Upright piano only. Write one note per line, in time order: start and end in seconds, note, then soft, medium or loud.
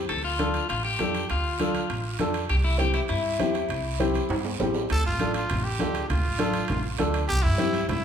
0.39 0.60 D4 medium
0.39 0.60 F4 medium
0.39 0.61 A4 medium
0.99 1.20 D4 medium
0.99 1.21 F4 medium
0.99 1.21 A4 medium
1.60 1.81 D4 medium
1.60 1.81 F4 medium
1.60 1.81 A4 medium
2.20 2.41 D4 medium
2.20 2.41 F4 medium
2.20 2.41 A4 medium
2.78 3.00 C4 medium
2.78 3.00 E4 medium
2.78 3.01 G4 medium
3.40 3.61 C4 medium
3.40 3.61 E4 medium
3.40 3.61 G4 medium
4.00 4.21 C4 medium
4.00 4.21 E4 medium
4.00 4.21 G4 medium
4.60 4.81 C4 medium
4.60 4.81 E4 medium
4.60 4.81 G4 medium
5.20 5.41 D4 medium
5.20 5.41 F4 medium
5.20 5.41 A4 medium
5.80 6.01 D4 medium
5.80 6.01 F4 medium
5.80 6.01 A4 medium
6.38 6.60 D4 medium
6.38 6.60 F4 medium
6.38 6.61 A4 medium
6.99 7.20 D4 medium
6.99 7.20 F4 medium
6.99 7.21 A4 medium
7.58 7.80 C4 medium
7.58 7.80 E4 medium
7.58 7.80 G4 medium